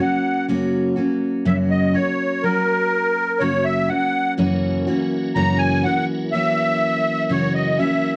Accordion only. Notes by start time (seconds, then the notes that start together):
0.01 F#5
1.46 E5
1.70 D#5
1.94 C#5
2.43 A#4
3.40 C#5
3.64 E5
3.89 F#5
5.35 A#5
5.58 G#5
5.83 F#5
6.32 E5
7.31 C#5
7.54 D#5
7.78 E5